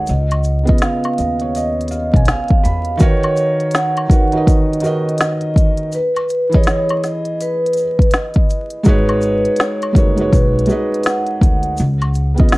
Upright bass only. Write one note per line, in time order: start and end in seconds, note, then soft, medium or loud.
0.09 0.65 C#2 loud
1.19 2.11 D#2 medium
2.14 2.26 B1 medium
2.65 2.99 E2 medium
8.87 9.43 G#1 medium
9.95 10.30 F#1 medium
10.33 10.67 B1 medium
11.42 11.76 D2 loud
11.80 12.35 C#2 loud